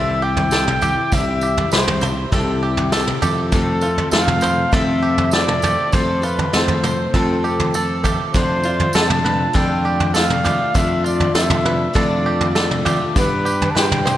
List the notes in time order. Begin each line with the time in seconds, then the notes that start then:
Already playing: C2 C3 G3 C4 E4 G4 A4 E5
0.22 G4 G5
0.37 floor tom
0.51 G3 C4 E4 G4 A4, snare, tambourine
0.68 mid tom
0.81 C4 E4 G4, floor tom, tambourine
1.12 C2 C3 G3 C4 E4 G4 E5, kick, floor tom, tambourine
1.41 G4, tambourine
1.57 floor tom
1.72 C2 G3 C4 E4 G4 C5 B5, snare, tambourine
1.88 floor tom, mid tom
2.01 C5, mid tom, tambourine
2.32 C2 C3 G3 C4 E4 G4 A4, kick, floor tom, mid tom, tambourine
2.63 G4
2.77 floor tom
2.92 G3 C4 E4 G4 A4, snare, tambourine
3.07 mid tom
3.22 F2 F3 A3 C4 G4 A4, floor tom, tambourine
3.52 F2 C3 F3 A3 C4 A4, kick, floor tom, tambourine
3.81 F3 A3 C4 F4 A4, tambourine
3.98 floor tom
4.11 F2 F3 A3 C4 A4 F5, snare, tambourine
4.28 floor tom, mid tom
4.41 C5, mid tom, tambourine
4.72 F2 C3 F3 A3 C4 A4 E5, kick, floor tom, mid tom, tambourine
5.03 G4
5.18 floor tom
5.31 F3 A3 C4 A4 D5, snare, tambourine
5.36 A4
5.48 mid tom
5.62 A3 C4 G4 A4, floor tom, tambourine
5.66 F3
5.92 F2 C3 F3 A3 C4 A4 C5, kick, floor tom, tambourine
6.22 F3 A3 C4 F4 A4 B4, tambourine
6.39 floor tom
6.53 F2 F3 A3 C4 A4 C5, snare, tambourine
6.68 floor tom
6.83 C5, mid tom, tambourine
7.14 F2 C3 F3 A3 C4 A4, kick, floor tom, tambourine
7.44 G4, tambourine
7.60 floor tom
7.74 F3 A3 C4 A4, tambourine
8.03 F3 A3 C4 G4 A4, kick, floor tom, tambourine
8.34 F2 D3 F3 A3 D4 F4 C5, kick, floor tom, tambourine
8.63 F3 A3 D4 F4, tambourine
8.80 floor tom
8.93 F2 F3 A3 D4 F4 A4 A5, snare, tambourine
9.10 floor tom, mid tom
9.25 B4, mid tom
9.53 F2 D3 F3 A3 D4 F4 A4 G5, kick, floor tom, mid tom, tambourine
9.85 G4
10.00 floor tom
10.14 F3 A3 D4 F4 A4 F5, snare, tambourine
10.30 mid tom
10.44 F3 A3 D4 F4 G4, floor tom, tambourine
10.74 F2 D3 F3 A3 D4 F4 E5, kick, floor tom, tambourine
11.04 F4 D5, tambourine
11.20 floor tom
11.35 F2 F3 A3 D4 F4 A4 E5, snare, tambourine
11.50 floor tom, mid tom
11.65 B4, mid tom
11.93 F2 D3 F3 A3 D4 F4 A4 D5, kick, floor tom, mid tom, tambourine
12.26 G4
12.41 floor tom
12.55 F3 A3 D4 F4 A4, snare, tambourine
12.71 mid tom
12.85 A3 D4 F4 G4, floor tom, tambourine
12.89 F3
13.16 G2 D3 G3 B3 D4 G4 B4, kick, floor tom, tambourine
13.45 G4, tambourine
13.62 floor tom
13.71 A5
13.75 G2 G3 D4 G4 B4 G5, snare, tambourine
13.92 floor tom, mid tom
14.06 C5, mid tom, tambourine